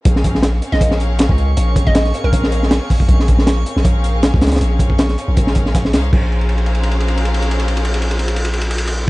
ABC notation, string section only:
X:1
M:4/4
L:1/8
Q:"Swing 16ths" 1/4=158
K:Bbm
V:1 name="String section"
[CDABf]3 [CDABf]4- [CDABf] | [CDABf]3 [CDABf]4- [CDABf] | [CDABf]3 [CDABf]4- [CDABf] | [CDABf]3 [CDABf]4 [DABcf] |
[DABcf]8- | [DABcf]8 |]